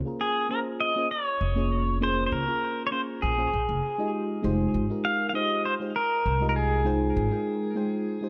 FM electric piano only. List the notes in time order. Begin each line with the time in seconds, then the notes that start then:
0.05 A#3 C#4 F4 G#4 A#4
0.49 A#3 C#4 F4 G#4 C5
0.96 A#3 C#4 F4 G#4 C5
1.55 A#3 C#4 F4 G#4 C#5
2.01 A#3 C#4 F4 G#4 C5
2.47 A#3 C#4 F4 G#4 A#4
2.91 A#3 C#4 F4 G#4 C5
3.37 A#3 C#4 F4 G#4 C5
3.98 G#3 D#4 F4 G4 D#5
4.43 G#3 D#4 F4 G4 C5
4.90 G#3 D#4 F4 G4 A#4
5.33 G#3 D#4 F4 G4 C5
5.80 G#3 D#4 F4 G4 C5
6.40 G#3 D#4 F4 G4 D#5
6.84 G#3 D#4 F4 C5 G5
7.31 G#3 D#4 F4 A#4 G5
7.75 G#3 D#4 F4 C5 G5
8.21 G#3 D#4 F4 G4 C5